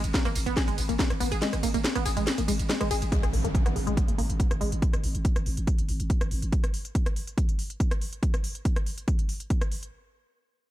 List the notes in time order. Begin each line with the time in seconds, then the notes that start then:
0.04 G#1, closed hi-hat, ride, tambourine
0.14 A#3, kick, snare, closed hi-hat, ride, tambourine
0.25 G#1 A#3, cross-stick, closed hi-hat, ride, tambourine
0.35 G#1, open hi-hat, ride, tambourine
0.46 G#1 B3, closed hi-hat, ride, tambourine
0.56 G#4, kick, snare, closed hi-hat, ride, tambourine
0.68 G#1 G#3, closed hi-hat, ride
0.78 G#1, open hi-hat, ride, tambourine
0.89 G#1 A#3, closed hi-hat, ride, tambourine
0.99 A#3, kick, snare, closed hi-hat, ride, tambourine
1.10 G#1, cross-stick, closed hi-hat, ride
1.20 G#1 B3, open hi-hat, ride, tambourine
1.32 G#1 G#4, closed hi-hat, ride, tambourine
1.42 G#3, snare, closed hi-hat, ride, tambourine
1.53 G#1, cross-stick, closed hi-hat, ride, tambourine
1.63 G#1 A#3, open hi-hat, ride, tambourine
1.74 G#1 A#3, closed hi-hat, ride, tambourine
1.84 snare, closed hi-hat, ride, tambourine
1.95 G#1 B3, cross-stick, closed hi-hat, ride, tambourine
2.06 G#1 G#4, open hi-hat, ride, tambourine
2.17 G#1 G#3, closed hi-hat, ride, tambourine
2.27 snare, closed hi-hat, ride, tambourine
2.38 G#1 A#3, closed hi-hat, ride, tambourine
2.48 G#1 G#3, open hi-hat, ride, tambourine
2.59 G#1, closed hi-hat, ride, tambourine
2.69 G#3, snare, closed hi-hat, ride, tambourine
2.81 G#1 G#3, cross-stick, closed hi-hat, ride
2.91 G#1 G#4, open hi-hat, ride, tambourine
3.02 G#1, closed hi-hat, ride, tambourine
3.12 G#3, kick, closed hi-hat, impact
3.23 G#1, cross-stick, closed hi-hat
3.33 G#1 A#3, open hi-hat
3.44 G#1 A#3, closed hi-hat
3.55 kick, closed hi-hat
3.66 G#1 B3, cross-stick, closed hi-hat
3.76 G#1 G#4, open hi-hat
3.87 G#1 G#3, closed hi-hat
3.97 kick, closed hi-hat
4.08 G#1 A#3, closed hi-hat
4.18 G#1 A#3, open hi-hat
4.30 G#1, closed hi-hat
4.39 B3, kick, closed hi-hat
4.51 G#1 G#4, cross-stick, closed hi-hat
4.61 G#1 G#3, open hi-hat
4.72 G#1, closed hi-hat
4.82 kick, closed hi-hat
4.93 G#1, cross-stick, closed hi-hat
5.04 G#1, open hi-hat
5.15 G#1, closed hi-hat
5.25 kick, closed hi-hat
5.36 G#1, cross-stick, closed hi-hat
5.46 G#1, open hi-hat
5.57 G#1, closed hi-hat
5.67 kick, closed hi-hat
5.78 G#1, closed hi-hat
5.89 G#1, open hi-hat
6.00 G#1, closed hi-hat
6.10 kick, closed hi-hat
6.21 G#1, cross-stick, closed hi-hat
6.31 G#1, open hi-hat
6.42 G#1, closed hi-hat
6.52 kick, closed hi-hat
6.64 cross-stick, closed hi-hat
6.74 open hi-hat
6.85 closed hi-hat
6.95 kick, closed hi-hat
7.06 cross-stick, closed hi-hat
7.16 open hi-hat
7.27 closed hi-hat
7.38 kick, closed hi-hat
7.49 closed hi-hat
7.59 open hi-hat
7.70 closed hi-hat
7.80 kick, closed hi-hat
7.91 cross-stick, closed hi-hat
8.02 open hi-hat
8.13 closed hi-hat
8.23 kick, closed hi-hat
8.34 cross-stick, closed hi-hat
8.44 open hi-hat
8.55 closed hi-hat
8.65 kick, closed hi-hat
8.76 cross-stick, closed hi-hat
8.86 open hi-hat
8.98 closed hi-hat
9.08 kick, closed hi-hat
9.19 closed hi-hat
9.29 open hi-hat
9.40 closed hi-hat
9.50 kick, closed hi-hat
9.61 cross-stick, closed hi-hat
9.72 open hi-hat
9.83 closed hi-hat